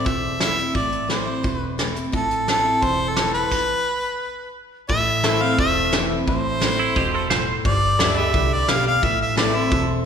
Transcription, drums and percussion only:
0.06 kick, closed hi-hat
0.40 snare, closed hi-hat
0.58 closed hi-hat
0.75 kick, closed hi-hat
0.92 closed hi-hat
1.09 snare, closed hi-hat
1.44 kick, closed hi-hat
1.79 snare, closed hi-hat
1.96 closed hi-hat
2.13 kick, closed hi-hat
2.31 closed hi-hat
2.48 snare, closed hi-hat
2.82 kick, closed hi-hat
3.16 snare, closed hi-hat
3.34 closed hi-hat
3.52 kick, crash
4.89 kick, open hi-hat
5.24 snare, open hi-hat
5.58 kick, open hi-hat
5.93 snare, open hi-hat
6.27 kick, open hi-hat
6.61 snare, open hi-hat
6.96 kick, open hi-hat
7.30 snare, open hi-hat
7.65 kick, open hi-hat
8.00 snare, open hi-hat
8.34 kick, open hi-hat
8.69 snare, open hi-hat
9.03 kick, open hi-hat
9.37 snare, open hi-hat
9.72 kick, open hi-hat

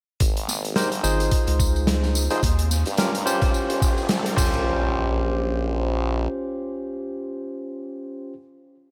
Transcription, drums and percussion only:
0.20 kick, closed hi-hat, tambourine
0.37 closed hi-hat, tambourine
0.48 snare, tambourine
0.65 closed hi-hat, tambourine
0.76 snare, closed hi-hat, tambourine
0.92 closed hi-hat, tambourine
1.04 tambourine
1.20 closed hi-hat, tambourine
1.31 kick, closed hi-hat, tambourine
1.47 closed hi-hat, tambourine
1.60 kick, tambourine
1.76 tambourine
1.87 snare, closed hi-hat, tambourine
2.03 snare, tambourine
2.15 tambourine
2.30 closed hi-hat, tambourine
2.43 kick, closed hi-hat, tambourine
2.59 closed hi-hat, tambourine
2.71 snare, tambourine
2.86 closed hi-hat, tambourine
2.97 snare, closed hi-hat, tambourine
3.15 closed hi-hat, tambourine
3.27 tambourine
3.42 kick, closed hi-hat, tambourine
3.54 tambourine
3.70 closed hi-hat, tambourine
3.82 kick, tambourine
3.98 tambourine
4.09 snare, closed hi-hat, tambourine
4.26 closed hi-hat, tambourine
4.37 kick, crash, tambourine
4.53 tambourine

